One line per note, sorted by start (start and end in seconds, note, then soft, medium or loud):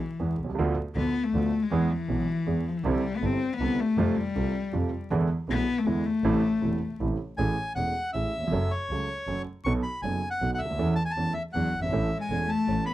0.00 0.38 E3 medium
0.19 0.35 E2 medium
0.19 0.35 E3 medium
0.19 0.35 G#3 soft
0.19 0.35 B3 soft
0.19 0.35 G#4 medium
0.39 0.57 C2 medium
0.44 0.48 B1 medium
0.49 0.53 C2 medium
0.55 0.58 C#2 medium
0.55 0.73 D2 loud
0.55 0.74 D3 medium
0.59 0.74 D2 medium
0.59 0.74 F3 medium
0.59 0.74 B3 medium
0.59 0.74 F4 medium
0.95 1.10 D2 medium
0.95 1.11 D2 medium
0.95 1.12 D3 medium
0.95 1.11 F3 soft
0.95 1.25 B3 medium
0.95 1.12 B3 soft
0.95 1.12 F4 medium
1.24 1.64 A3 medium
1.33 1.48 D2 medium
1.33 1.49 D2 medium
1.33 1.50 D3 medium
1.33 1.49 F3 soft
1.33 1.50 B3 soft
1.33 1.49 F4 medium
1.63 1.95 G#3 medium
1.71 1.86 E2 medium
1.71 1.87 E3 medium
1.71 1.87 G#3 medium
1.71 1.87 B3 medium
1.71 1.87 G#4 medium
1.93 2.70 E3 loud
2.08 2.24 B1 medium
2.08 2.24 B2 medium
2.08 2.24 E3 soft
2.08 2.24 G#3 soft
2.08 2.24 B3 soft
2.08 2.24 G#4 soft
2.46 2.62 E2 medium
2.46 2.62 E3 medium
2.46 2.62 G#3 soft
2.46 2.62 B3 soft
2.46 2.62 G#4 medium
2.68 2.79 F3 medium
2.77 2.89 E3 medium
2.84 3.00 C2 medium
2.84 3.01 C3 medium
2.84 3.00 D3 medium
2.84 3.00 G3 medium
2.84 3.18 G3 loud
2.84 3.01 C4 medium
2.84 3.00 E4 medium
3.17 3.27 B3 medium
3.22 3.37 G1 medium
3.22 3.38 G1 medium
3.22 3.38 G2 medium
3.22 3.37 D3 soft
3.22 3.38 G3 soft
3.22 3.38 C4 soft
3.22 3.38 E4 soft
3.26 3.55 C4 loud
3.53 3.82 B3 loud
3.60 3.75 C2 medium
3.60 3.76 C2 medium
3.60 3.76 C3 medium
3.60 3.76 D3 soft
3.60 3.75 G3 soft
3.60 3.75 C4 soft
3.60 3.76 E4 medium
3.80 4.20 A3 loud
3.97 4.13 F2 loud
3.97 4.13 F2 medium
3.97 4.13 C3 medium
3.97 4.14 F3 medium
3.97 4.13 G3 medium
3.97 4.14 A3 medium
3.97 4.14 F4 medium
4.18 4.92 G3 loud
4.36 4.51 C2 medium
4.36 4.51 C3 medium
4.36 4.51 G3 soft
4.36 4.51 A3 soft
4.36 4.51 F4 medium
4.73 4.89 F2 medium
4.73 4.88 C3 medium
4.73 4.89 F3 medium
4.73 4.89 G3 soft
4.73 4.89 A3 soft
4.73 4.89 F4 medium
5.11 5.26 E2 loud
5.11 5.27 E2 medium
5.11 5.26 D3 medium
5.11 5.27 E3 medium
5.11 5.27 G#3 medium
5.11 5.27 B3 medium
5.11 5.27 E4 medium
5.48 5.64 B1 medium
5.48 5.64 B2 medium
5.48 5.64 D3 soft
5.48 5.64 G#3 soft
5.48 5.64 B3 soft
5.48 5.80 B3 loud
5.48 5.64 E4 medium
5.79 5.89 A3 medium
5.85 6.01 E2 medium
5.85 6.02 E2 medium
5.85 6.02 D3 medium
5.85 6.02 E3 medium
5.85 6.02 G#3 soft
5.85 6.08 G#3 loud
5.85 6.02 B3 soft
5.85 6.02 E4 medium
6.06 7.00 A3 loud
6.24 6.39 A1 medium
6.24 6.40 A1 medium
6.24 6.40 A2 medium
6.24 6.40 C3 medium
6.24 6.40 E3 medium
6.24 6.40 A3 medium
6.24 6.40 E4 medium
6.61 6.77 E1 medium
6.61 6.78 E2 medium
6.61 6.77 C3 soft
6.61 6.78 E3 soft
6.61 6.78 A3 soft
6.61 6.78 E4 medium
7.00 7.16 A1 medium
7.00 7.16 A2 medium
7.00 7.16 C3 medium
7.00 7.16 E3 soft
7.00 7.16 A3 soft
7.00 7.16 E4 medium
7.38 7.54 A1 medium
7.38 7.54 A2 medium
7.38 7.54 E3 medium
7.38 7.54 A3 medium
7.38 7.54 C#4 medium
7.38 7.54 G#4 medium
7.38 7.73 G#5 medium
7.75 7.92 E1 soft
7.75 7.92 E1 medium
7.75 7.92 E2 medium
7.75 7.92 E3 soft
7.75 7.92 A3 soft
7.75 7.92 C#4 soft
7.75 7.92 G#4 soft
7.75 8.11 F#5 medium
8.13 8.30 A1 medium
8.13 8.30 A2 medium
8.13 8.30 E3 soft
8.13 8.30 A3 soft
8.13 8.30 C#4 soft
8.13 8.30 G#4 soft
8.13 8.72 E5 medium
8.37 8.42 D#2 soft
8.43 8.47 E2 medium
8.47 8.52 F2 medium
8.52 8.68 F#1 medium
8.52 8.68 F#2 medium
8.52 8.68 F#3 medium
8.52 8.68 A3 medium
8.52 8.68 C#4 medium
8.52 8.68 A4 medium
8.71 9.42 C#5 medium
8.89 9.05 C#2 medium
8.89 9.06 C#2 soft
8.89 9.06 C#3 medium
8.89 9.06 F#3 soft
8.89 9.06 A3 soft
8.89 9.06 C#4 soft
8.89 9.06 A4 soft
9.27 9.43 F#1 medium
9.27 9.43 F#2 medium
9.27 9.43 F#3 medium
9.27 9.43 A3 soft
9.27 9.43 C#4 soft
9.27 9.44 A4 medium
9.64 9.81 B1 medium
9.64 9.81 B2 medium
9.64 9.81 F#3 medium
9.64 9.81 B3 medium
9.64 9.81 D#4 medium
9.64 9.82 A4 medium
9.64 9.73 C#6 loud
9.83 10.01 B5 medium
10.02 10.19 F#1 medium
10.02 10.20 F#1 soft
10.02 10.20 F#2 medium
10.02 10.19 F#3 soft
10.02 10.19 B3 soft
10.02 10.19 D#4 soft
10.02 10.20 A4 soft
10.02 10.29 G#5 medium
10.30 10.51 F#5 medium
10.40 10.56 B1 medium
10.40 10.57 B1 medium
10.40 10.57 B2 medium
10.40 10.57 F#3 soft
10.40 10.57 B3 soft
10.40 10.57 D#4 soft
10.40 10.57 A4 medium
10.54 10.94 E5 medium
10.54 10.60 F#5 medium
10.60 10.78 D2 medium
10.65 10.69 C#2 soft
10.70 10.74 D2 medium
10.75 10.79 D#2 medium
10.75 10.94 E2 medium
10.75 10.94 A3 medium
10.79 10.95 E2 medium
10.79 10.95 E3 medium
10.79 10.95 C#4 medium
10.79 10.95 A4 medium
10.96 11.03 A5 medium
11.05 11.12 G#5 medium
11.11 11.33 A5 medium
11.17 11.32 E2 medium
11.17 11.33 E2 medium
11.17 11.33 E3 medium
11.17 11.33 A3 soft
11.17 11.33 C#4 soft
11.17 11.33 A4 soft
11.32 11.41 E3 medium
11.32 11.43 E5 medium
11.53 11.70 E2 medium
11.53 11.71 E2 medium
11.53 11.71 E3 medium
11.53 11.80 F#3 medium
11.53 11.71 B3 soft
11.53 11.71 D4 soft
11.53 11.71 G#4 soft
11.53 11.80 F#5 medium
11.73 11.92 G1 medium
11.80 11.84 F#1 soft
11.80 11.88 G1 medium
11.80 12.17 E3 medium
11.80 12.18 E5 medium
11.88 11.93 G#1 medium
11.92 12.08 A1 medium
11.92 12.09 A1 medium
11.92 12.09 A2 medium
11.92 12.08 E3 medium
11.92 12.08 A3 medium
11.92 12.09 C#4 medium
11.92 12.09 A4 medium
12.17 12.46 G#3 medium
12.17 12.50 G#5 medium
12.30 12.46 E1 medium
12.30 12.47 E1 medium
12.30 12.47 E2 medium
12.30 12.47 E3 soft
12.30 12.47 A3 soft
12.30 12.47 C#4 soft
12.30 12.47 A4 soft
12.46 12.83 A3 medium
12.46 12.84 A5 medium
12.67 12.84 A1 medium
12.67 12.84 A2 medium
12.67 12.84 E3 soft
12.67 12.84 A3 soft
12.67 12.84 C#4 soft
12.67 12.84 A4 soft
12.85 12.94 B3 medium
12.85 12.94 B5 medium